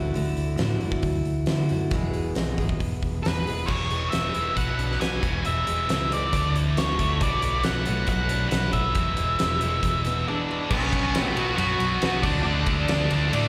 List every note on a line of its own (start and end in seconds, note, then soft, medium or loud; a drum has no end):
0.00 0.11 D2 medium
0.00 0.13 D3 medium
0.00 0.14 A3 medium
0.00 0.16 E4 medium
0.00 0.16 F#4 medium
0.14 0.35 D2 medium
0.14 0.56 D3 medium
0.14 0.58 A3 medium
0.14 0.59 E4 medium
0.14 0.59 F#4 medium
0.14 open hi-hat medium
0.37 0.56 D2 medium
0.37 open hi-hat soft
0.57 0.78 A2 medium
0.57 1.03 D3 medium
0.57 0.82 A3 loud
0.57 0.81 E4 medium
0.57 0.79 F#4 medium
0.57 snare loud
0.57 open hi-hat medium
0.80 1.01 F#2 medium
0.80 1.48 A3 medium
0.80 1.49 E4 medium
0.80 1.50 F#4 medium
0.80 open hi-hat soft
0.92 kick medium
1.03 1.22 D2 medium
1.03 kick medium
1.03 open hi-hat medium
1.25 1.45 D2 medium
1.25 open hi-hat soft
1.46 1.91 D3 medium
1.46 1.67 D3 medium
1.46 1.71 A3 medium
1.46 1.71 E4 medium
1.46 snare loud
1.46 open hi-hat medium
1.51 1.68 F#4 medium
1.69 1.89 F#2 medium
1.69 1.92 A3 medium
1.69 1.94 E4 medium
1.69 1.91 F#4 medium
1.69 open hi-hat soft
1.91 2.11 E1 medium
1.91 2.34 E2 medium
1.91 2.35 B2 medium
1.91 2.36 E3 medium
1.91 2.37 G#3 medium
1.91 2.37 B3 medium
1.91 2.38 G#4 medium
1.91 kick loud
1.91 open hi-hat medium
2.14 2.33 E1 medium
2.14 open hi-hat medium
2.35 2.55 B1 medium
2.35 2.80 E2 medium
2.35 2.81 B2 medium
2.35 2.60 E3 medium
2.35 2.59 G#3 loud
2.35 2.58 B3 medium
2.35 2.57 G#4 medium
2.35 snare loud
2.35 open hi-hat medium
2.58 2.77 G#1 medium
2.58 3.23 E3 medium
2.58 3.25 G#3 medium
2.58 3.26 B3 medium
2.58 3.27 G#4 medium
2.58 kick medium
2.58 open hi-hat soft
2.69 kick medium
2.80 2.99 E1 medium
2.80 kick medium
2.80 open hi-hat medium
3.03 3.22 E1 medium
3.03 kick medium
3.03 open hi-hat soft
3.23 3.44 E2 medium
3.23 3.49 E3 medium
3.23 3.48 G#3 medium
3.23 3.70 B4 medium
3.23 snare loud
3.23 open hi-hat medium
3.27 3.48 B3 medium
3.27 3.46 G#4 medium
3.47 3.66 E1 medium
3.47 3.69 E3 medium
3.47 3.69 G#3 medium
3.47 3.69 B3 medium
3.47 3.68 G#4 medium
3.47 open hi-hat soft
3.66 4.09 E1 medium
3.66 4.33 E2 medium
3.66 4.34 B2 medium
3.66 4.09 C#5 medium
3.66 kick medium
3.66 crash loud
3.70 4.58 E2 medium
3.70 4.33 E3 loud
3.90 4.34 G#3 medium
3.90 closed hi-hat medium
4.10 4.57 E5 medium
4.10 snare loud
4.10 closed hi-hat medium
4.14 4.34 E1 medium
4.14 4.58 E3 medium
4.34 4.56 E1 medium
4.34 4.57 E2 medium
4.34 4.54 B2 medium
4.34 4.55 E3 medium
4.34 4.57 G#3 medium
4.34 closed hi-hat medium
4.56 4.97 B1 medium
4.56 5.21 B2 medium
4.56 5.23 B2 medium
4.56 5.22 F#3 loud
4.56 5.23 B3 medium
4.56 5.00 F#5 medium
4.56 kick medium
4.56 closed hi-hat medium
4.79 5.23 D4 medium
4.79 closed hi-hat medium
4.91 snare soft
5.01 5.22 B1 medium
5.01 5.23 F#4 medium
5.01 5.42 G#5 loud
5.01 snare loud
5.01 closed hi-hat medium
5.22 5.43 E1 medium
5.22 5.87 E2 medium
5.22 5.44 E2 medium
5.22 5.89 B2 medium
5.22 kick loud
5.22 closed hi-hat medium
5.27 5.90 E3 loud
5.45 5.66 E1 medium
5.45 6.33 E2 medium
5.45 6.14 E5 medium
5.45 closed hi-hat medium
5.67 5.87 E1 medium
5.67 6.10 G#3 medium
5.67 closed hi-hat medium
5.88 6.34 C#2 medium
5.88 6.31 E2 medium
5.88 6.32 B2 medium
5.88 6.34 E3 medium
5.88 6.33 E3 medium
5.88 snare loud
5.88 closed hi-hat medium
6.12 6.34 G#3 medium
6.12 6.53 D5 medium
6.12 closed hi-hat medium
6.33 6.73 D2 loud
6.33 6.98 D3 medium
6.33 7.22 D3 medium
6.33 6.99 A3 loud
6.33 6.98 D4 medium
6.33 kick medium
6.33 closed hi-hat medium
6.55 7.21 E4 medium
6.55 closed hi-hat medium
6.77 6.98 D2 medium
6.77 7.21 F#4 medium
6.77 7.22 C#5 medium
6.77 snare loud
6.77 closed hi-hat medium
6.99 7.19 D2 medium
6.99 7.21 A3 medium
6.99 7.20 D4 medium
6.99 kick medium
6.99 closed hi-hat medium
7.03 7.21 D3 medium
7.21 7.61 B1 medium
7.21 8.30 B2 medium
7.21 7.86 B2 medium
7.21 7.87 F#3 medium
7.21 7.67 D5 loud
7.21 kick loud
7.21 closed hi-hat medium
7.25 7.87 B3 loud
7.42 7.86 A3 medium
7.42 closed hi-hat medium
7.63 7.86 B1 medium
7.63 8.08 F#3 medium
7.63 8.08 F#5 loud
7.63 snare loud
7.63 closed hi-hat medium
7.86 8.07 B1 medium
7.86 8.96 F#3 medium
7.86 8.73 A3 medium
7.86 10.71 B3 medium
7.86 closed hi-hat medium
7.90 8.96 B2 medium
8.07 8.48 B1 medium
8.07 8.96 F#3 medium
8.07 8.48 F#5 medium
8.07 kick medium
8.07 closed hi-hat medium
8.29 8.96 D4 medium
8.29 closed hi-hat medium
8.49 8.72 B1 medium
8.49 8.96 F#4 medium
8.49 8.72 F#5 loud
8.49 snare loud
8.49 closed hi-hat medium
8.73 8.94 B1 medium
8.73 8.96 A3 medium
8.73 10.44 E5 medium
8.73 kick medium
8.73 closed hi-hat medium
8.95 9.16 E1 medium
8.95 9.60 E2 medium
8.95 10.05 E2 medium
8.95 9.61 B2 medium
8.95 9.61 E3 loud
8.95 kick loud
8.95 closed hi-hat medium
9.17 9.38 E1 medium
9.17 9.60 G#3 medium
9.17 closed hi-hat medium
9.39 9.80 E1 medium
9.39 9.83 E3 medium
9.39 snare loud
9.39 closed hi-hat medium
9.61 10.69 B2 medium
9.61 10.70 E3 medium
9.61 10.49 G#3 medium
9.61 closed hi-hat medium
9.65 10.71 E2 medium
9.83 10.23 E1 loud
9.83 10.71 E3 medium
9.83 kick medium
9.83 closed hi-hat medium
10.05 10.72 B3 medium
10.05 snare soft
10.05 closed hi-hat medium
10.28 10.69 D4 medium
10.28 10.71 G#4 medium
10.28 10.73 D5 medium
10.51 10.72 G#3 medium
10.70 10.89 B1 medium
10.70 11.12 B2 medium
10.70 11.14 F#3 loud
10.70 11.14 B3 loud
10.70 11.24 C#5 medium
10.70 kick loud
10.70 crash loud
10.75 11.34 C#4 medium
10.93 11.11 B1 medium
10.93 kick medium
10.93 ride medium
11.13 11.32 B1 medium
11.13 11.36 B2 medium
11.13 11.37 F#3 medium
11.13 11.37 B3 medium
11.13 snare loud
11.13 ride medium
11.24 11.40 B4 medium
11.36 11.54 B1 medium
11.36 11.57 B2 medium
11.36 11.58 F#3 medium
11.36 11.59 B3 medium
11.36 11.57 F#4 medium
11.36 11.55 F#5 medium
11.36 ride medium
11.56 11.76 F#2 loud
11.56 12.01 B2 loud
11.56 12.02 F#3 loud
11.56 12.20 F#4 medium
11.56 12.19 F#5 medium
11.56 ride medium
11.60 12.03 B3 loud
11.79 11.97 B1 medium
11.79 ride medium
12.02 12.20 B1 medium
12.02 12.23 B2 medium
12.02 12.23 F#3 medium
12.02 12.24 B3 loud
12.02 snare loud
12.02 ride medium
12.23 12.41 D2 medium
12.23 12.44 D3 medium
12.23 12.46 A3 loud
12.23 12.45 D4 medium
12.23 12.46 D4 medium
12.23 12.42 D5 medium
12.23 kick loud
12.23 crash medium
12.43 12.63 D2 loud
12.43 12.88 D3 loud
12.43 12.90 A3 loud
12.43 13.48 D4 medium
12.43 12.90 D4 loud
12.43 13.48 D5 medium
12.66 12.85 D2 medium
12.66 kick medium
12.66 ride medium
12.88 13.07 D2 medium
12.88 13.10 D3 medium
12.88 13.11 A3 medium
12.88 13.11 D4 loud
12.88 snare loud
12.88 ride medium
13.11 13.29 D2 medium
13.11 13.32 D3 medium
13.11 13.33 A3 medium
13.11 13.34 D4 medium
13.11 ride medium
13.33 13.48 A2 medium
13.33 13.48 D3 loud
13.33 13.48 A3 loud
13.33 13.48 D4 loud
13.33 ride loud